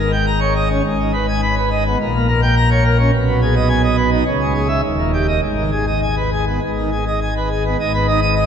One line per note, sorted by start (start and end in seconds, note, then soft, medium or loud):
0.00 0.81 G#1 medium
0.00 0.81 G#2 medium
0.00 0.12 A#4 medium
0.12 0.26 G5 medium
0.26 0.40 A#5 loud
0.40 0.54 C#5 medium
0.56 0.69 D#5 medium
0.70 0.82 C#4 medium
0.84 1.96 G#1 medium
0.84 1.96 G#2 medium
0.99 1.12 D#3 medium
1.13 1.26 B4 medium
1.28 1.41 G#5 medium
1.42 1.55 B5 loud
1.57 1.69 B4 medium
1.71 1.84 D#5 medium
1.86 1.98 B3 medium
2.00 3.10 A#1 loud
2.00 3.10 A#2 medium
2.15 2.27 A#3 medium
2.28 2.41 A#4 medium
2.42 2.55 G5 medium
2.57 2.69 A#5 loud
2.71 2.83 C#5 medium
2.85 2.98 A#4 medium
2.99 3.11 C#4 medium
3.13 4.23 B1 medium
3.13 4.23 B2 medium
3.27 3.40 B3 medium
3.42 3.54 G#4 medium
3.56 3.68 D#5 medium
3.69 3.82 G#5 loud
3.83 3.96 D#5 medium
3.97 4.10 B4 medium
4.11 4.24 D#4 medium
4.25 4.82 C#2 medium
4.25 4.82 C#3 medium
4.40 4.53 G#3 medium
4.54 4.67 G#4 medium
4.68 4.81 E5 medium
4.83 5.41 D#1 medium
4.83 5.41 D#2 medium
4.98 5.11 A#2 medium
5.13 5.26 G4 medium
5.28 5.41 D#5 medium
5.41 6.60 G#1 medium
5.41 6.60 G#2 medium
5.57 5.70 D#3 soft
5.71 5.85 G#4 medium
5.87 6.00 D#5 medium
6.02 6.15 G#5 medium
6.17 6.30 B4 medium
6.32 6.45 G#4 medium
6.47 6.60 B3 medium
6.62 7.75 G#1 medium
6.62 7.75 G#2 medium
6.77 6.90 D#3 medium
6.91 7.04 G#4 medium
7.07 7.20 D#5 medium
7.21 7.34 G#5 medium
7.37 7.49 B4 medium
7.51 7.64 G#4 medium
7.65 7.77 B3 medium
7.80 8.46 G#1 medium
7.80 8.46 G#2 medium
7.80 7.92 D#5 medium
7.94 8.06 B4 medium
8.07 8.20 D#4 medium
8.07 8.20 D#5 medium
8.21 8.34 D#6 medium
8.35 8.46 D#5 medium